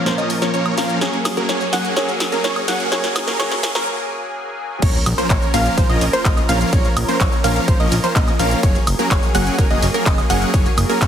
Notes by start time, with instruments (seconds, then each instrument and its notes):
Already playing: grand piano A#2 F3 A#3 C#4 A#4, analog synth pad F3 C#4 A#4, riser
0.05 grand piano A#2 F3 A#3 C#4 A#4, supersaw synth F3 A#3 C#4 A#4 C5, synth pluck C5, snare, closed hi-hat, shaker
0.18 supersaw synth F3 A#3 C#4 A#4 D#5, synth pluck D#5, closed hi-hat, shaker
0.30 open hi-hat, shaker
0.42 supersaw synth F3 A#3 C#4 A#4 C#5, synth pluck C#5, snare, closed hi-hat, shaker
0.54 supersaw synth F3 A#3 C#4 A#4 C#5, synth pluck C#5, closed hi-hat, shaker
0.66 closed hi-hat, high woodblock
0.77 supersaw synth F3 A#3 C#4 A#4 F5, synth pluck F5, snare, open hi-hat, shaker
0.90 closed hi-hat, shaker
1.00 grand piano F#3 A#3 C#4 G#4, analog synth pad F#3 A#3 G#4, supersaw synth F#3 A#3 C#4 G#4 C#5, synth pluck C#5, snare, closed hi-hat, shaker
1.13 closed hi-hat
1.25 snare, open hi-hat, high woodblock, shaker
1.37 supersaw synth F#3 A#3 C#4 G#4 A#4, synth pluck A#4, closed hi-hat, shaker
1.49 supersaw synth F#3 A#3 C#4 G#4 C#5, synth pluck C#5, snare, closed hi-hat, shaker
1.61 closed hi-hat, shaker
1.73 supersaw synth F#3 A#3 C#4 G#4 F#5, synth pluck F#5, snare, open hi-hat, shaker
1.85 closed hi-hat, shaker
1.95 grand piano F#3 A#3 C#4 G#4, supersaw synth F#3 A#3 C#4 G#4 C#5, synth pluck C#5, snare, closed hi-hat, shaker
2.08 closed hi-hat, shaker
2.20 snare, open hi-hat, shaker
2.32 supersaw synth F#3 A#3 C#4 G#4 A#4, synth pluck A#4, closed hi-hat, shaker
2.44 supersaw synth F#3 A#3 C#4 G#4 C#5, synth pluck C#5, snare, closed hi-hat, shaker
2.56 closed hi-hat, high woodblock
2.68 supersaw synth F#3 A#3 C#4 G#4 F#5, synth pluck F#5, snare, open hi-hat, shaker
2.80 closed hi-hat, shaker
2.90 grand piano F#3 A#3 C#4 G#4, supersaw synth F#3 A#3 C#4 G#4 C#5, synth pluck C#5, snare, closed hi-hat, shaker
3.04 snare, closed hi-hat, shaker
3.16 snare, open hi-hat, high woodblock, shaker
3.27 supersaw synth F#3 A#3 C#4 G#4 A#4, synth pluck A#4, snare, open hi-hat, shaker
3.38 grand piano F#3 A#3 C#4 G#4, supersaw synth F#3 A#3 C#4 G#4 C#5, synth pluck C#5, snare, closed hi-hat, shaker
3.52 snare, closed hi-hat, shaker
3.63 snare, open hi-hat, shaker
3.75 supersaw synth F#3 A#3 C#4 G#4 A#4, synth pluck A#4, snare, closed hi-hat, shaker
4.82 analog synth bass A#1, supersaw synth F3 A#3 C#4 A#4 C#5, analog synth pad F3 C#4 A#4, synth pluck C#5, kick, closed hi-hat, ride, crash, sub drop, shaker
4.94 closed hi-hat, shaker
5.06 analog synth bass A#1, open hi-hat, high woodblock, shaker
5.18 supersaw synth F3 A#3 C#4 A#4 C5, synth pluck C5, closed hi-hat, shaker
5.30 analog synth bass A#1, synth pluck C#5, kick, clap, closed hi-hat, ride, shaker
5.42 closed hi-hat, shaker
5.54 analog synth bass A#1, supersaw synth F3 A#3 C#4 A#4 F5, synth pluck F5, open hi-hat, shaker
5.66 closed hi-hat, shaker
5.77 analog synth bass A#1, supersaw synth F3 A#3 C#4 A#4 C5, synth pluck C5, kick, closed hi-hat, ride, shaker
5.89 analog synth bass A#1, supersaw synth F3 A#3 C#4 A#4 D#5, synth pluck D#5, closed hi-hat
6.01 analog synth bass A#1, open hi-hat, shaker
6.13 supersaw synth F3 A#3 C#4 A#4 C5, synth pluck C5, closed hi-hat, shaker
6.25 analog synth bass A#1, supersaw synth F3 A#4 D#5, synth pluck D#5, kick, clap, closed hi-hat, ride, shaker
6.37 closed hi-hat, high woodblock, shaker
6.49 analog synth bass A#1, supersaw synth F3 A#3 C#4 A#4 F5, synth pluck F5, open hi-hat, shaker
6.61 closed hi-hat, shaker
6.73 analog synth bass A#1, supersaw synth C#4 C#5, synth pluck C#5, kick, closed hi-hat, ride, shaker
6.85 closed hi-hat, shaker
6.96 analog synth bass A#1, open hi-hat, high woodblock, shaker
7.08 supersaw synth F3 A#3 C#4 A#4 C5, synth pluck C5, open hi-hat, shaker
7.20 analog synth bass A#1, synth pluck C#5, kick, clap, closed hi-hat, ride, shaker
7.32 closed hi-hat, shaker
7.44 analog synth bass A#1, supersaw synth F3 A#3 C#4 A#4 F5, synth pluck F5, open hi-hat, shaker
7.56 closed hi-hat, shaker
7.68 analog synth bass A#1, supersaw synth F3 A#3 C#4 A#4 C5, synth pluck C5, kick, closed hi-hat, ride, shaker
7.80 analog synth bass A#1, supersaw synth F3 A#3 C#4 A#4 D#5, synth pluck D#5, closed hi-hat
7.92 analog synth bass A#1, open hi-hat, shaker
8.04 supersaw synth F3 A#3 C#4 A#4 C5, synth pluck C5, closed hi-hat, shaker
8.16 analog synth bass A#1, supersaw synth F3 C#4, synth pluck D#5, kick, clap, closed hi-hat, ride, shaker
8.28 closed hi-hat, high woodblock, shaker
8.39 analog synth bass A#1, supersaw synth F3 A#3 C#4 A#4 F5, synth pluck F5, open hi-hat, shaker
8.51 closed hi-hat, shaker
8.63 analog synth bass F#1, analog synth pad F#3 A#3 G#4, supersaw synth F#3 A#3 C#4 C#5, synth pluck C#5, kick, closed hi-hat, ride, shaker
8.75 closed hi-hat, shaker
8.87 analog synth bass F#1, open hi-hat, high woodblock, shaker
8.99 supersaw synth F#3 A#3 C#4 G#4 A#4, synth pluck A#4, closed hi-hat, shaker
9.11 analog synth bass F#1, synth pluck C#5, kick, clap, closed hi-hat, ride, shaker
9.23 closed hi-hat, shaker
9.35 analog synth bass F#1, supersaw synth F#3 A#3 C#4 G#4 F#5, synth pluck F#5, open hi-hat, shaker
9.47 closed hi-hat, shaker
9.58 analog synth bass F#1, supersaw synth F#3 A#3 C#4 G#4 A#4, synth pluck A#4, kick, closed hi-hat, ride, shaker
9.70 analog synth bass F#1, supersaw synth F#3 A#3 C#4 G#4 D#5, synth pluck D#5, closed hi-hat
9.82 analog synth bass F#1, open hi-hat, shaker
9.94 supersaw synth F#3 A#3 C#4 G#4 A#4, synth pluck A#4, closed hi-hat, shaker
10.06 analog synth bass F#1, supersaw synth C#4, synth pluck D#5, kick, clap, closed hi-hat, ride, shaker
10.18 closed hi-hat, high woodblock, shaker
10.30 analog synth bass F#1, supersaw synth F#3 A#3 C#4 G#4 F#5, synth pluck F#5, open hi-hat, shaker
10.42 closed hi-hat, shaker
10.54 analog synth bass F#1, supersaw synth F#3 A#3 C#4 G#4 C#5, synth pluck C#5, kick, closed hi-hat, ride, shaker
10.66 closed hi-hat, shaker
10.78 analog synth bass F#1, open hi-hat, high woodblock, shaker
10.89 supersaw synth F#3 A#3 C#4 G#4 A#4, synth pluck A#4, open hi-hat, shaker
11.01 analog synth bass F#1, synth pluck C#5, kick, clap, closed hi-hat, ride, shaker